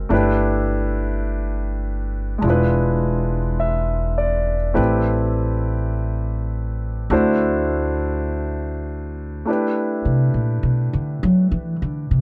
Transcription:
0.00 0.11 G#3 soft
0.00 0.11 C4 soft
0.00 0.11 D#4 soft
0.00 0.11 F#4 soft
0.00 0.12 A#4 soft
0.09 2.40 G1 medium
0.09 2.43 A3 soft
0.09 2.40 D4 soft
0.09 2.42 E4 soft
0.09 2.45 G4 soft
0.13 2.45 B4 medium
2.38 4.73 E1 medium
2.38 4.75 G#3 soft
2.38 4.77 D4 soft
2.44 4.73 E4 soft
2.44 4.80 F4 soft
2.50 4.74 B4 soft
3.60 4.55 E5 soft
4.18 5.03 D5 soft
4.74 7.07 A1 medium
4.74 7.09 A3 soft
4.74 7.10 C4 soft
4.74 7.10 E4 soft
4.74 7.11 G4 soft
4.74 7.11 B4 soft
7.10 9.43 D2 medium
7.10 9.44 A3 soft
7.10 9.46 D4 soft
7.10 9.46 E4 soft
7.10 9.47 F#4 soft
7.10 9.48 C5 medium
9.46 12.21 A3 soft
9.46 12.21 D4 soft
9.46 12.21 E4 soft
9.46 12.21 G4 soft
9.50 12.21 B4 soft
10.05 10.33 C3 medium
10.34 10.58 A#2 medium
10.63 10.93 B2 medium
10.93 11.22 D3 medium
11.23 11.51 F#3 medium
11.52 11.75 E3 medium
11.82 12.10 D3 medium
12.11 12.21 C3 medium

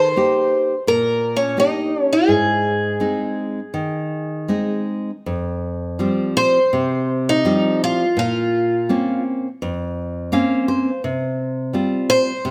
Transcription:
0.00 0.14 D#3 medium
0.00 0.83 C5 loud
0.16 0.73 A#3 medium
0.16 0.73 D#4 soft
0.16 0.73 G4 medium
0.87 1.56 A#2 medium
0.87 1.36 A#4 loud
1.36 1.59 C#4 medium
1.57 2.14 A#3 soft
1.57 2.14 D#4 soft
1.57 2.02 D#4 medium
1.57 2.15 G4 medium
2.02 2.14 C#4 medium
2.13 4.46 G#4 medium
2.28 2.98 G#2 medium
3.00 3.59 G#3 soft
3.00 3.59 C4 soft
3.00 3.59 D#4 soft
3.74 4.47 D#3 medium
4.48 5.10 G#3 soft
4.48 5.10 C4 soft
4.48 5.10 D#4 medium
5.26 5.98 F2 medium
5.99 6.58 F3 soft
5.99 6.58 G3 soft
5.99 6.58 C4 medium
6.37 7.31 C5 loud
6.73 7.44 C3 medium
7.29 7.83 D#4 medium
7.45 8.03 F3 medium
7.45 8.04 G3 medium
7.45 8.04 C4 medium
7.84 8.17 F4 medium
8.17 8.87 A#2 medium
8.17 9.22 F4 medium
8.89 9.47 A#3 soft
8.89 9.47 C4 soft
8.89 9.47 C#4 medium
9.62 10.31 F2 medium
10.32 10.89 A#3 medium
10.32 10.89 C4 medium
10.32 10.90 C#4 medium
10.32 10.66 F5 medium
10.68 11.01 C5 medium
11.04 11.72 C3 medium
11.73 12.30 G3 soft
11.73 12.31 C4 soft
11.73 12.31 F4 medium
12.10 12.51 C5 loud
12.45 12.51 C3 medium

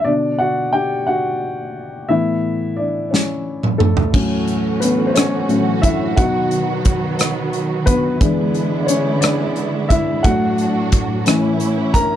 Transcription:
0.04 1.04 B2 soft
0.04 1.04 D3 soft
0.04 0.38 D4 medium
0.04 0.41 D5 medium
0.39 0.72 F#4 medium
0.39 0.75 F#5 medium
0.73 1.06 G4 medium
0.73 1.09 G5 medium
1.07 2.07 F#4 soft
1.07 2.06 F#5 medium
2.09 4.09 A2 soft
2.09 4.10 E3 soft
2.09 4.10 B3 soft
2.09 2.74 E4 medium
2.09 2.73 E5 medium
2.77 2.86 D4 soft
2.77 2.84 D5 medium
3.11 3.85 C#4 soft
3.11 3.84 C#5 soft
3.11 snare soft
3.63 mid tom soft
3.78 4.78 A3 soft
3.78 4.84 A4 medium
3.78 mid tom medium
3.97 floor tom medium
4.13 4.58 A2 soft
4.13 6.16 E3 medium
4.13 4.59 F#3 soft
4.13 6.16 A3 medium
4.13 4.59 C#4 soft
4.13 6.16 C#4 medium
4.13 8.18 F#4 medium
4.13 kick loud
4.13 crash medium
4.48 closed hi-hat soft
4.80 5.07 B3 soft
4.80 5.09 B4 medium
4.80 closed hi-hat medium
5.07 5.15 C5 medium
5.15 5.48 C#4 medium
5.15 5.85 C#5 medium
5.15 cross-stick medium
5.15 closed hi-hat medium
5.49 5.80 A2 soft
5.49 5.80 F#3 soft
5.49 5.80 C#4 soft
5.49 closed hi-hat soft
5.82 6.15 E4 medium
5.82 6.18 E5 medium
5.82 kick medium
5.82 closed hi-hat medium
6.16 8.17 B2 soft
6.16 8.20 D#3 medium
6.16 8.17 F#3 soft
6.16 8.20 F#3 medium
6.16 8.19 B3 medium
6.16 8.17 D#4 medium
6.16 7.50 F#4 medium
6.16 7.49 F#5 medium
6.16 kick loud
6.16 closed hi-hat medium
6.51 closed hi-hat soft
6.85 kick medium
6.85 closed hi-hat medium
7.19 cross-stick medium
7.19 closed hi-hat medium
7.53 closed hi-hat soft
7.86 8.79 B3 medium
7.86 8.84 B4 medium
7.86 kick medium
7.86 closed hi-hat medium
8.21 10.23 D3 medium
8.21 10.21 E3 soft
8.21 10.23 G#3 medium
8.21 10.21 G#3 soft
8.21 10.23 B3 medium
8.21 9.22 D4 medium
8.21 10.23 E4 medium
8.21 kick medium
8.21 closed hi-hat medium
8.54 closed hi-hat soft
8.80 8.88 D5 soft
8.87 9.21 C#4 soft
8.87 9.19 C#5 medium
8.87 closed hi-hat medium
9.21 9.87 D4 medium
9.21 9.86 D5 medium
9.21 cross-stick loud
9.21 closed hi-hat medium
9.56 closed hi-hat soft
9.89 10.23 E4 medium
9.89 10.21 E5 medium
9.89 kick medium
9.89 closed hi-hat medium
10.23 11.22 A2 soft
10.23 12.16 A2 medium
10.23 11.23 F#3 soft
10.23 11.26 F#3 medium
10.23 11.23 A3 medium
10.23 11.26 D4 medium
10.23 11.26 F#4 medium
10.23 11.57 F#4 medium
10.23 11.56 F#5 medium
10.23 kick medium
10.23 closed hi-hat medium
10.58 closed hi-hat soft
10.92 kick medium
10.92 closed hi-hat medium
11.26 11.71 A2 soft
11.26 12.16 E3 medium
11.26 11.72 E3 soft
11.26 12.16 C#4 medium
11.26 11.72 C#4 medium
11.26 12.16 E4 medium
11.26 cross-stick loud
11.26 closed hi-hat medium
11.60 closed hi-hat soft
11.94 12.16 A#4 medium
11.94 12.16 A#5 loud
11.94 kick medium
11.94 closed hi-hat medium

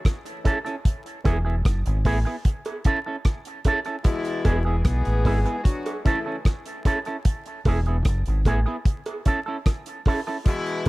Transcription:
0.05 kick loud
0.05 cross-stick loud
0.05 closed hi-hat medium
0.26 closed hi-hat medium
0.44 0.57 C#4 medium
0.44 0.57 E4 loud
0.44 0.58 A4 loud
0.44 kick medium
0.44 closed hi-hat medium
0.44 cowbell medium
0.65 0.75 C#4 medium
0.65 0.75 E4 medium
0.65 0.74 A4 medium
0.65 closed hi-hat soft
0.85 kick loud
0.85 closed hi-hat medium
1.06 closed hi-hat soft
1.24 1.61 E1 medium
1.24 1.37 B3 medium
1.24 1.38 E4 medium
1.24 1.38 G#4 medium
1.24 kick loud
1.24 closed hi-hat medium
1.24 cowbell medium
1.45 1.55 B3 medium
1.45 1.55 E4 medium
1.45 1.54 G#4 medium
1.65 1.84 F#1 medium
1.65 kick loud
1.65 cross-stick loud
1.65 closed hi-hat loud
1.86 2.04 G#1 medium
1.86 closed hi-hat medium
2.05 2.24 A1 medium
2.05 2.17 B3 medium
2.05 2.18 E4 medium
2.05 2.18 G#4 loud
2.05 kick medium
2.05 open hi-hat medium
2.05 cowbell medium
2.25 2.36 B3 soft
2.25 2.35 E4 medium
2.25 2.35 G#4 medium
2.45 kick loud
2.45 closed hi-hat loud
2.65 closed hi-hat soft
2.65 cowbell medium
2.84 2.98 C#4 medium
2.84 2.98 E4 loud
2.84 2.99 A4 medium
2.84 kick medium
2.84 closed hi-hat medium
3.06 3.16 C#4 medium
3.06 3.16 E4 medium
3.06 3.15 A4 medium
3.25 kick loud
3.25 cross-stick medium
3.25 closed hi-hat medium
3.45 closed hi-hat medium
3.65 3.78 C#4 medium
3.65 3.78 E4 medium
3.65 3.79 A4 loud
3.65 kick medium
3.65 closed hi-hat medium
3.65 cowbell medium
3.85 3.96 C#4 medium
3.85 3.96 E4 medium
3.85 3.95 A4 medium
3.85 closed hi-hat soft
4.04 4.62 B2 loud
4.04 4.62 E3 loud
4.04 4.62 G#3 loud
4.04 4.62 E4 loud
4.04 kick loud
4.04 closed hi-hat loud
4.25 closed hi-hat soft
4.44 4.81 E1 medium
4.44 4.57 B3 medium
4.44 4.58 E4 medium
4.44 4.58 G#4 medium
4.44 kick medium
4.44 closed hi-hat medium
4.44 cowbell medium
4.65 4.81 E3 medium
4.65 4.81 G#3 medium
4.65 4.81 B3 medium
4.65 4.76 B3 soft
4.65 4.75 E4 soft
4.65 4.81 G#4 medium
4.65 4.75 G#4 medium
4.84 5.04 B1 medium
4.84 5.61 E3 medium
4.84 5.61 G#3 medium
4.84 5.61 B3 medium
4.84 5.61 G#4 loud
4.84 kick loud
4.84 cross-stick loud
4.84 closed hi-hat loud
5.05 5.24 A1 medium
5.05 closed hi-hat medium
5.25 5.44 G#1 medium
5.25 5.38 B3 medium
5.25 5.38 E4 medium
5.25 5.39 G#4 medium
5.25 kick medium
5.25 open hi-hat medium
5.25 cowbell medium
5.45 5.56 B3 medium
5.45 5.55 E4 soft
5.45 5.55 G#4 medium
5.45 closed hi-hat soft
5.64 5.97 F#3 medium
5.64 5.97 D4 medium
5.64 5.96 F#4 medium
5.64 kick loud
5.64 closed hi-hat loud
5.86 closed hi-hat soft
5.86 cowbell medium
6.05 6.37 C#3 medium
6.05 6.37 E3 medium
6.05 6.37 A3 medium
6.05 6.18 C#4 medium
6.05 6.37 E4 medium
6.05 6.18 E4 medium
6.05 6.19 A4 medium
6.05 kick medium
6.05 closed hi-hat medium
6.26 6.36 C#4 soft
6.26 6.36 E4 medium
6.26 6.35 A4 medium
6.45 kick medium
6.45 cross-stick medium
6.45 closed hi-hat medium
6.66 closed hi-hat medium
6.85 6.98 C#4 medium
6.85 6.98 E4 medium
6.85 6.99 A4 loud
6.85 kick medium
6.85 closed hi-hat medium
6.85 cowbell medium
7.05 7.16 C#4 medium
7.05 7.16 E4 medium
7.05 7.16 A4 medium
7.05 closed hi-hat soft
7.25 kick loud
7.25 closed hi-hat loud
7.46 closed hi-hat soft
7.65 8.02 E1 medium
7.65 7.79 B3 medium
7.65 7.79 E4 medium
7.65 7.79 G#4 medium
7.65 kick medium
7.65 open hi-hat medium
7.65 cowbell medium
7.86 7.97 B3 medium
7.86 7.96 E4 medium
7.86 7.96 G#4 medium
7.86 closed hi-hat soft
8.05 8.24 F#1 medium
8.05 kick loud
8.05 cross-stick loud
8.05 closed hi-hat loud
8.26 8.45 G#1 medium
8.26 closed hi-hat soft
8.45 8.64 A1 medium
8.45 8.59 B3 medium
8.45 8.59 E4 medium
8.45 8.59 G#4 medium
8.45 kick medium
8.45 closed hi-hat medium
8.45 cowbell medium
8.66 8.76 B3 medium
8.66 8.76 E4 medium
8.66 8.75 G#4 medium
8.85 kick loud
8.85 closed hi-hat loud
9.06 closed hi-hat soft
9.06 cowbell medium
9.25 9.38 C#4 medium
9.25 9.39 E4 medium
9.25 9.39 A4 medium
9.25 kick medium
9.25 closed hi-hat medium
9.46 9.57 C#4 medium
9.46 9.57 E4 medium
9.46 9.56 A4 medium
9.66 kick medium
9.66 cross-stick loud
9.66 closed hi-hat medium
9.86 closed hi-hat medium
10.05 10.19 C#4 medium
10.05 10.20 E4 medium
10.05 10.20 A4 medium
10.05 kick medium
10.05 open hi-hat medium
10.05 cowbell medium
10.27 10.37 C#4 medium
10.27 10.37 E4 medium
10.27 10.36 A4 medium
10.46 10.89 B2 loud
10.46 10.89 E3 loud
10.46 10.89 G#3 loud
10.46 10.89 E4 loud
10.46 kick loud
10.46 closed hi-hat loud
10.66 closed hi-hat soft
10.85 closed hi-hat medium

